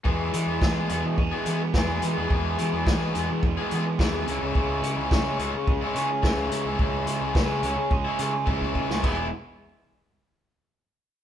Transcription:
<<
  \new Staff \with { instrumentName = "Overdriven electric guitar" } { \clef bass \time 4/4 \key e \major \tempo 4 = 107 <e, b, e gis b gis'>8. <e gis b gis'>16 <e, b, e gis b gis'>8 <e gis b gis'>8. <e gis b gis'>16 <e gis b gis'>8 <e, b, e gis b gis'>8. <e gis b gis'>16 | <e, b, e gis b gis'>8. <e gis b gis'>16 <e, b, e gis b gis'>8 <e gis b gis'>8. <e gis b gis'>16 <e gis b gis'>8 <e, b, e gis b gis'>8 <cis e gis cis' e'>16 <gis cis' e'>16 | <cis e gis cis' e'>8. <gis cis' e'>16 <cis e gis cis' e'>8 <e gis cis' e'>8. <gis cis' e'>16 <e gis cis' e'>8 <cis e gis cis' e'>8. <gis cis' e'>16 | <cis e gis cis' e'>8. <gis cis' e'>16 <cis e gis cis' e'>8 <e gis cis' e'>8. <gis cis' e'>16 <e gis cis' e'>8 <cis e gis cis' e'>8. <gis cis' e'>16 |
<e gis b e'>8 r2. r8 | }
  \new Staff \with { instrumentName = "Overdriven electric guitar" } { \clef bass \time 4/4 \key e \major e8 e8 gis8 b8 gis8 b8 e8 gis8 | e8 e8 gis8 b8 gis8 b8 e8 cis8 | cis8 cis8 gis8 cis'8 gis8 cis'8 cis8 gis8 | cis8 cis8 gis8 cis'8 gis8 cis'8 cis8 gis8 |
<e gis b e'>8 r2. r8 | }
  \new Staff \with { instrumentName = "Fingered electric bass" } { \clef bass \time 4/4 \key e \major e,8 e16 e,16 e8 e,16 e16 e,16 r16 e8 e,8 e16 e,16 | e,8 e16 e,16 e8 e,16 e16 e,16 r16 e8 dis,8 cis,16 cis,16 | cis,8 cis16 cis,16 cis8 cis,16 cis16 cis,16 r16 cis8 cis,8 cis16 cis,16 | cis,8 cis16 cis,16 cis8 cis,16 cis16 cis,16 r16 cis8 cis,8 cis16 cis,16 |
e,,8 r2. r8 | }
  \new DrumStaff \with { instrumentName = "Drums" } \drummode { \time 4/4 bd8 hh8 <bd sn>8 hh8 bd8 hh8 <bd sn>8 hh8 | bd8 hh8 <bd sn>8 hh8 bd8 hh8 <bd sn>8 hh8 | bd8 hh8 <bd sn>8 hh8 bd8 hh8 <bd sn>8 hh8 | bd8 hh8 <bd sn>8 hh8 bd8 hh8 bd16 bd16 bd16 sn16 |
<cymc bd>4 r4 r4 r4 | }
>>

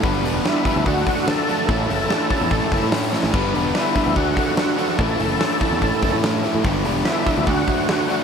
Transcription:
<<
  \new Staff \with { instrumentName = "Tonewheel organ" } { \time 4/4 \key a \mixolydian \tempo 4 = 145 r4 e'4 fis'4 a'4 | a'2. r4 | r4 e'4 fis'4 fis'4 | a'2. r4 |
r4 e'4 fis'4 fis'4 | }
  \new Staff \with { instrumentName = "Overdriven electric guitar" } { \time 4/4 \key a \mixolydian <g b d' b'>8 <g b d' b'>8 <g b d' b'>8 <g b d' b'>8 <d d' fis' a'>8 <d d' fis' a'>8 <d d' fis' a'>8 <d d' fis' a'>8 | <a, a cis' e' a'>8 <a, a cis' e' a'>8 <a, a cis' e' a'>8 <a, a cis' e' a'>8 <a, a cis' e' a'>8 <a, a cis' e' a'>8 <a, a cis' e' a'>8 <a, a cis' e' a'>8 | <g b d' b'>8 <g b d' b'>8 <g b d' b'>8 <g b d' b'>8 <d d' fis' a'>8 <d d' fis' a'>8 <d d' fis' a'>8 <d d' fis' a'>8 | <a, a cis' e' a'>8 <a, a cis' e' a'>8 <a, a cis' e' a'>8 <a, a cis' e' a'>8 <a, a cis' e' a'>8 <a, a cis' e' a'>8 <a, a cis' e' a'>8 <a, a cis' e' a'>8 |
<g, d g b d' g'>8 <g, d g b d' g'>8 <g, d g b d' g'>8 <g, d g b d' g'>8 <d a d' fis'>8 <d a d' fis'>8 <d a d' fis'>8 <d a d' fis'>8 | }
  \new Staff \with { instrumentName = "Overdriven electric guitar" } { \time 4/4 \key a \mixolydian <g, d g b d'>8 <g, d g b d'>8 <g, d g b d'>8 <g, d g b d'>8 <d fis a d'>8 <d fis a d'>8 <d fis a d'>8 <d fis a d'>8 | <a, e a cis' e'>8 <a, e a cis' e'>8 <a, e a cis' e'>8 <a, e a cis' e'>8 <a, e a cis' e'>8 <a, e a cis' e'>8 <a, e a cis' e'>8 <a, e a cis' e'>8 | <g, d g b d'>8 <g, d g b d'>8 <g, d g b d'>8 <g, d g b d'>8 <d fis a d'>8 <d fis a d'>8 <d fis a d'>8 <d fis a d'>8 | <a, e a cis' e'>8 <a, e a cis' e'>8 <a, e a cis' e'>8 <a, e a cis' e'>8 <a, e a cis' e'>8 <a, e a cis' e'>8 <a, e a cis' e'>8 <a, e a cis' e'>8 |
<g, d g b d'>8 <g, d g b d'>8 <g, d g b d'>8 <g, d g b d'>8 <d fis a d'>8 <d fis a d'>8 <d fis a d'>8 <d fis a d'>8 | }
  \new Staff \with { instrumentName = "Overdriven electric guitar" } { \clef bass \time 4/4 \key a \mixolydian <g, d g>4. <g, d g>8 <d a d'>4. <d a d'>8 | <a, e a>4. <a, e a>2~ <a, e a>8 | <g, d g>4. <g, d g>8 <d a d'>4. <d a d'>8 | <a, e a>4. <a, e a>2~ <a, e a>8 |
<g, d g>4. <g, d g>8 <d a d'>4. <d a d'>8 | }
  \new Staff \with { instrumentName = "Picked electric bass" } { \clef bass \time 4/4 \key a \mixolydian g,,8 e,,8 r8. d,16 d,8 r4. | a,,8 fis,,8 r8. e,16 a,,16 r16 fis,,16 a,4 a,,16 | g,,8 e,,8 r8. d,16 d,8 r4. | a,,8 fis,,8 r8. e,16 a,,16 r16 fis,,16 a,4 a,16 |
g,,8 e,,8 r8. d,16 d,8 r4. | }
  \new DrumStaff \with { instrumentName = "Drums" } \drummode { \time 4/4 <hho bd>8 hho8 <hho sn>8 <hho bd>8 <hho bd>8 <hho bd>16 sn16 <hho sn>8 hho8 | <hho bd>8 hho8 <hho sn>8 <hho bd>8 <hho bd>8 <hho bd>8 <hho sn>8 sn16 sn16 | <cymc bd>8 hho8 <hho sn>8 <hho bd>8 <hho bd>8 <hho bd>8 <hho sn>8 hho16 sn16 | <hho bd>8 hho8 <hho sn>8 <hho bd>8 <hho bd>8 <hho bd>8 <hho sn>8 hho8 |
<hho bd>8 hho8 <hho sn>8 <hho bd>8 <hho bd>8 <hho bd>8 <hho sn>8 hho8 | }
>>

